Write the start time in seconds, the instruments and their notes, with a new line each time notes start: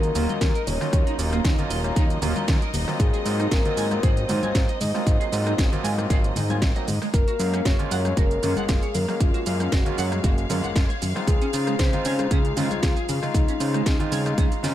Already playing: analog synth bass D#2, tine electric piano F#3 A#3 C#4 F4, string section D#4 D#5, soft synth lead A#4
0.03 closed hi-hat, shaker
0.15 analog synth bass D#1, tine electric piano F#3 A#3 C#4 F4, clean electric guitar A#3, open hi-hat, low conga, shaker
0.29 analog synth bass D#2, clean electric guitar D#5, closed hi-hat, high conga, shaker
0.41 analog synth bass D#2, tine electric piano F#3 A#3 C#4 F4, kick, snare, closed hi-hat, shaker
0.55 clean electric guitar A#4, closed hi-hat, shaker
0.67 analog synth bass D#1, soft synth lead C#5, open hi-hat, low conga, shaker
0.80 clean electric guitar D#3, tine electric piano F#3 A#3 C#4 F4, cross-stick, shaker
0.93 analog synth bass D#2, kick, closed hi-hat, shaker
1.07 clean electric guitar D#4, closed hi-hat, shaker
1.18 analog synth bass D#1, tine electric piano F#3 A#3 C#4 F4, open hi-hat, shaker
1.33 clean electric guitar A#3, cross-stick, closed hi-hat, shaker
1.45 analog synth bass D#2, clean electric guitar D#4, kick, snare, closed hi-hat, shaker
1.58 tine electric piano F#3 A#3 C#4 F4, closed hi-hat, low conga, shaker
1.70 analog synth bass D#1, clean electric guitar D#5, open hi-hat, shaker
1.84 tine electric piano F#3 A#3 C#4 F4, cross-stick, closed hi-hat, high conga, shaker
1.96 analog synth bass D#2, clean electric guitar D#4, kick, closed hi-hat, shaker
2.10 closed hi-hat, shaker
2.22 analog synth bass D#1, tine electric piano F#3 A#3 C#4 F4, clean electric guitar A#3, open hi-hat, low conga, shaker
2.36 analog synth bass D#2, clean electric guitar D#5, closed hi-hat, high conga, shaker
2.47 analog synth bass D#2, tine electric piano F#3 A#3 C#4 F4, kick, snare, closed hi-hat, shaker
2.62 clean electric guitar A#4, closed hi-hat, shaker
2.73 analog synth bass D#1, open hi-hat, low conga, shaker
2.87 clean electric guitar D#3, tine electric piano F#3 A#3 C4 F4, cross-stick, shaker
3.00 analog synth bass G#1, soft synth lead G#4, kick, closed hi-hat, shaker
3.13 clean electric guitar G#4, closed hi-hat, shaker
3.25 analog synth bass G#2, tine electric piano F#3 A#3 C4 F4, open hi-hat, shaker
3.40 clean electric guitar D#4, cross-stick, closed hi-hat, shaker
3.51 analog synth bass G#1, clean electric guitar G#4, soft synth lead A#4, kick, snare, closed hi-hat, shaker
3.65 tine electric piano F#3 A#3 C4 F4, closed hi-hat, low conga, shaker
3.77 analog synth bass G#2, clean electric guitar G#5, open hi-hat, shaker
3.91 tine electric piano F#3 A#3 C4 F4, cross-stick, closed hi-hat, high conga, shaker
4.03 analog synth bass G#1, clean electric guitar G#4, soft synth lead C5, kick, closed hi-hat, shaker
4.17 closed hi-hat, shaker
4.29 analog synth bass G#2, tine electric piano F#3 A#3 C4 F4, clean electric guitar D#4, open hi-hat, low conga, shaker
4.43 analog synth bass G#1, clean electric guitar G#5, closed hi-hat, high conga, shaker
4.54 analog synth bass G#1, tine electric piano F#3 A#3 C4 F4, kick, snare, closed hi-hat, shaker
4.69 clean electric guitar D#5, closed hi-hat, shaker
4.81 analog synth bass G#2, soft synth lead D#5, open hi-hat, low conga, shaker
4.94 tine electric piano F#3 A#3 C4 F4, clean electric guitar G#3, cross-stick, shaker
5.07 analog synth bass G#1, kick, closed hi-hat, shaker
5.20 clean electric guitar G#4, closed hi-hat, shaker
5.32 analog synth bass G#2, tine electric piano F#3 A#3 C4 F4, open hi-hat, shaker
5.46 clean electric guitar D#4, cross-stick, closed hi-hat, shaker
5.58 analog synth bass G#1, clean electric guitar G#4, kick, snare, closed hi-hat, shaker
5.72 tine electric piano F#3 A#3 C4 F4, closed hi-hat, low conga, shaker
5.84 analog synth bass G#2, clean electric guitar G#5, open hi-hat, shaker
5.98 tine electric piano F#3 A#3 C4 F4, cross-stick, closed hi-hat, high conga, shaker
6.10 analog synth bass G#1, clean electric guitar G#4, kick, closed hi-hat, shaker
6.24 closed hi-hat, shaker
6.36 analog synth bass G#2, clean electric guitar D#4, open hi-hat, low conga, shaker
6.50 tine electric piano F#3 A#3 C4 F4, clean electric guitar G#5, closed hi-hat, high conga, shaker
6.62 analog synth bass G#1, kick, snare, closed hi-hat, shaker
6.75 tine electric piano F#3 A#3 C4 D#4, clean electric guitar D#5, closed hi-hat, shaker
6.88 analog synth bass G#2, open hi-hat, low conga, shaker
7.02 clean electric guitar G#3, cross-stick, shaker
7.14 analog synth bass F#1, soft synth lead A#4, string section F5, kick, closed hi-hat, shaker
7.28 clean electric guitar F#4, closed hi-hat, shaker
7.39 analog synth bass F#2, tine electric piano G#3 A#3 C#4 F5, open hi-hat, shaker
7.54 clean electric guitar C#4, cross-stick, closed hi-hat, shaker
7.65 analog synth bass F#1, clean electric guitar F#4, soft synth lead C#5, kick, snare, closed hi-hat, shaker
7.79 tine electric piano G#3 A#3 C#4 F4, closed hi-hat, low conga, shaker
7.91 analog synth bass F#2, clean electric guitar F#5, open hi-hat, shaker
8.05 tine electric piano G#3 A#3 C#4, cross-stick, closed hi-hat, high conga, shaker
8.17 analog synth bass F#1, clean electric guitar F#4, soft synth lead A#4, kick, closed hi-hat, shaker
8.31 closed hi-hat, shaker
8.43 analog synth bass F#2, tine electric piano G#3 A#3 C#4 F4, clean electric guitar C#4, open hi-hat, low conga, shaker
8.56 analog synth bass F#1, soft synth lead G#4, clean electric guitar F#5, closed hi-hat, high conga, shaker
8.68 analog synth bass F#1, tine electric piano G#3 A#3 C#4 F4, kick, snare, closed hi-hat, shaker
8.83 clean electric guitar C#5, closed hi-hat, shaker
8.95 analog synth bass F#2, soft synth lead A#4, open hi-hat, low conga, shaker
9.08 clean electric guitar F#3, tine electric piano G#3 A#3 C#4, cross-stick, shaker
9.20 analog synth bass F#1, soft synth lead F4, kick, closed hi-hat, shaker
9.34 clean electric guitar F#4, closed hi-hat, shaker
9.46 analog synth bass F#2, tine electric piano G#3 A#3 C#4 F5, open hi-hat, shaker
9.60 clean electric guitar C#4, cross-stick, closed hi-hat, shaker
9.72 analog synth bass F#1, soft synth lead F#4, clean electric guitar F#4, kick, snare, closed hi-hat, shaker
9.85 tine electric piano G#3 A#3 C#4 F4, closed hi-hat, low conga, shaker
9.98 analog synth bass F#2, clean electric guitar F#5, open hi-hat, shaker
10.11 tine electric piano G#3 A#3 C#4, cross-stick, closed hi-hat, high conga, shaker
10.24 analog synth bass F#1, clean electric guitar F#4, kick, closed hi-hat, shaker
10.38 closed hi-hat, shaker
10.49 analog synth bass F#2, tine electric piano G#3 A#3 C#4 F4, clean electric guitar C#4, open hi-hat, low conga, shaker
10.64 analog synth bass F#1, clean electric guitar F#5, closed hi-hat, high conga, shaker
10.75 analog synth bass F#1, tine electric piano G#3 A#3 C#4 F4, kick, snare, closed hi-hat, shaker
10.90 clean electric guitar C#5, closed hi-hat, shaker
11.02 analog synth bass F#2, open hi-hat, low conga, shaker
11.15 clean electric guitar F#3, tine electric piano G#3 C4 D#4 F4, cross-stick, shaker
11.27 analog synth bass C#2, soft synth lead G#4, kick, closed hi-hat, shaker
11.42 clean electric guitar C#4, closed hi-hat, shaker
11.53 analog synth bass C#3, tine electric piano G#3 D#4 F4 C5, open hi-hat, shaker
11.67 clean electric guitar G#3, cross-stick, closed hi-hat, shaker
11.79 analog synth bass C#2, clean electric guitar C#4, soft synth lead C5, kick, snare, closed hi-hat, shaker
11.93 tine electric piano G#3 C4 D#4 F4, closed hi-hat, low conga, shaker
12.05 analog synth bass C#3, clean electric guitar C#5, open hi-hat, shaker
12.19 tine electric piano G#3 D#4 F4, cross-stick, closed hi-hat, high conga, shaker
12.31 analog synth bass C#2, clean electric guitar C#4, soft synth lead G#4, kick, closed hi-hat, shaker
12.45 closed hi-hat, shaker
12.57 analog synth bass C#3, tine electric piano G#3 C4 D#4 F4, clean electric guitar G#3, soft synth lead F4, open hi-hat, low conga, shaker
12.71 analog synth bass C#2, clean electric guitar C#5, closed hi-hat, high conga, shaker
12.83 analog synth bass C#2, kick, snare, closed hi-hat, shaker
12.97 clean electric guitar G#4, closed hi-hat, shaker
13.09 analog synth bass C#3, open hi-hat, low conga, shaker
13.22 clean electric guitar C#3, tine electric piano G#3 D#4 F4, cross-stick, shaker
13.34 analog synth bass C#2, soft synth lead D#4, kick, closed hi-hat, shaker
13.48 clean electric guitar C#4, closed hi-hat, shaker
13.60 analog synth bass C#3, tine electric piano G#3 D#4 F4 C5, open hi-hat, shaker
13.74 clean electric guitar G#3, cross-stick, closed hi-hat, shaker
13.86 analog synth bass C#2, clean electric guitar C#4, kick, snare, closed hi-hat, shaker
13.99 tine electric piano G#3 C4 D#4 F4, closed hi-hat, low conga, shaker
14.12 analog synth bass C#3, clean electric guitar C#5, open hi-hat, high conga, shaker
14.25 tine electric piano G#3 D#4 F4, cross-stick, closed hi-hat, high conga, shaker
14.38 analog synth bass C#2, clean electric guitar C#4, kick, closed hi-hat, shaker
14.52 closed hi-hat, shaker
14.63 analog synth bass C#3, tine electric piano G#3 C4 D#4 F4, clean electric guitar F4, snare, open hi-hat, low conga, shaker